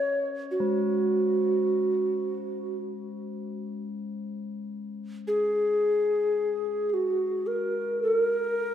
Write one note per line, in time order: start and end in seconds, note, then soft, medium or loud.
0.00 0.38 C#4 soft
0.00 0.25 C#5 medium
0.51 2.77 F#4 medium
0.60 8.74 G#3 soft
5.28 6.89 G#4 medium
6.89 6.95 G#4 medium
6.94 7.48 F#4 medium
7.47 8.02 A#4 medium
8.03 8.18 A4 medium
8.18 8.74 A#4 medium